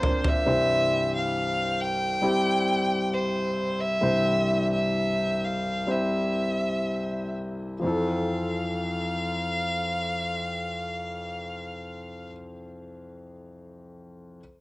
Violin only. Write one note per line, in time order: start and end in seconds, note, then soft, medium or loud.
0.00 0.30 C5 medium
0.28 1.14 E5 medium
1.15 1.83 F5 medium
1.81 3.15 G5 medium
3.14 3.82 C5 medium
3.80 4.71 E5 medium
4.73 5.45 E5 medium
5.44 5.92 F5 medium
5.90 7.35 E5 medium
7.85 12.30 F5 medium